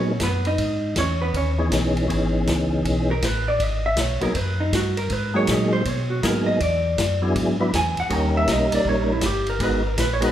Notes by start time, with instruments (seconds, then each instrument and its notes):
Already playing: tonewheel organ A#2 F#3 A#3 B3 D#4 G#4
0.20 tonewheel organ F#2, hollow-body jazz guitar B4, kick, snare, hi-hat pedal, ride
0.24 hollow-body jazz guitar B3
0.45 hollow-body jazz guitar D#4 D#5, ride
0.58 tonewheel organ G#2, kick, ride
0.96 tonewheel organ E2, hollow-body jazz guitar C#4 C#5, kick, snare, hi-hat pedal, ride
1.22 hollow-body jazz guitar B3 B4
1.34 tonewheel organ D#2, hollow-body jazz guitar C#4 C#5, kick, ride
1.59 tonewheel organ E3 B3 C#4 D#4 G#4
1.72 tonewheel organ B1, kick, snare, hi-hat pedal, ride
1.97 ride
2.08 tonewheel organ G#1 E3 B3 C#4 D#4 G#4, kick, ride
2.47 tonewheel organ C#2, kick, snare, hi-hat pedal, ride
2.85 tonewheel organ B1, kick, ride
3.11 hollow-body jazz guitar A#4
3.22 tonewheel organ A1, hollow-body jazz guitar B4, kick, snare, hi-hat pedal, ride
3.48 hollow-body jazz guitar D5
3.60 tonewheel organ G#1, hollow-body jazz guitar D#5, kick, ride
3.86 hollow-body jazz guitar E5
3.97 tonewheel organ B1, hollow-body jazz guitar C#5, kick, snare, hi-hat pedal, ride
4.21 tonewheel organ B1 F#3 A#3 B3 D#4 G#4, hollow-body jazz guitar A#4, ride
4.35 tonewheel organ F#2, hollow-body jazz guitar B4, kick, ride
4.60 hollow-body jazz guitar D#4
4.72 tonewheel organ G2, hollow-body jazz guitar F#4, kick, snare, hi-hat pedal, ride
4.97 hollow-body jazz guitar A#4, ride
5.10 tonewheel organ G#2, hollow-body jazz guitar B4, kick, ride
5.34 tonewheel organ F#3 G#3 A#3 D#4 G#4, hollow-body jazz guitar C#5
5.47 tonewheel organ A#2, hollow-body jazz guitar D#5, kick, snare, hi-hat pedal, ride
5.73 hollow-body jazz guitar C5
5.85 tonewheel organ B2, hollow-body jazz guitar C#5, kick, ride
6.10 hollow-body jazz guitar F#4
6.23 tonewheel organ G#2 F#3 A#3 B3 D#4 G#4, hollow-body jazz guitar A#4, kick, snare, hi-hat pedal, ride
6.46 hollow-body jazz guitar D#5
6.60 tonewheel organ E2, hollow-body jazz guitar D5, kick, ride
6.98 tonewheel organ F#2, kick, snare, hi-hat pedal, ride
7.22 tonewheel organ F#3 B3 D4 E4 G#4
7.36 tonewheel organ G#2, kick, ride
7.60 tonewheel organ F#3 B3 D4 E4 B4
7.73 tonewheel organ E2, hollow-body jazz guitar G#5, kick, snare, hi-hat pedal, ride
7.97 tonewheel organ E2, hollow-body jazz guitar F#5, ride
8.09 tonewheel organ D#2 G3 A#3 C#4 D#4 A#4, hollow-body jazz guitar G5, kick, ride
8.37 hollow-body jazz guitar E5
8.48 tonewheel organ B1, kick, snare, hi-hat pedal, ride
8.52 hollow-body jazz guitar D#5
8.72 tonewheel organ B1, hollow-body jazz guitar D5, ride
8.85 tonewheel organ A#1, hollow-body jazz guitar C#5, kick
9.12 hollow-body jazz guitar E4
9.21 tonewheel organ G1, kick, snare, hi-hat pedal, ride
9.26 hollow-body jazz guitar G4
9.47 hollow-body jazz guitar A#4, ride
9.60 tonewheel organ G#1 G#3 B3 D#4 F#4 A#4, hollow-body jazz guitar B4, kick, ride
9.87 hollow-body jazz guitar A#4
9.97 tonewheel organ A#1, hollow-body jazz guitar B4, kick, snare, hi-hat pedal, ride
10.14 hollow-body jazz guitar C#5
10.20 tonewheel organ G#3 B3 D#4 F#4 A#4, ride
10.26 hollow-body jazz guitar B4